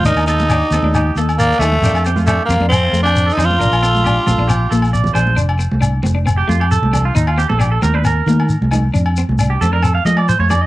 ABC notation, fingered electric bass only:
X:1
M:4/4
L:1/16
Q:1/4=135
K:Fmix
V:1 name="Fingered electric bass" clef=bass
E,, E,,4- E,, E,, E,,3 E,,4 E,,2 | F,, F,,4- F,, F,, F,,3 F,,4 F,,2 | B,,, B,,,4- B,,, B,,, B,,,3 B,,,4 B,,,2 | F,,,3 C,,3 F,,,4 F,,3 C,,3 |
E,,3 B,,,3 E,,4 E,3 C,,3 | F,,3 C,,3 F,,4 F,3 F,,3 |]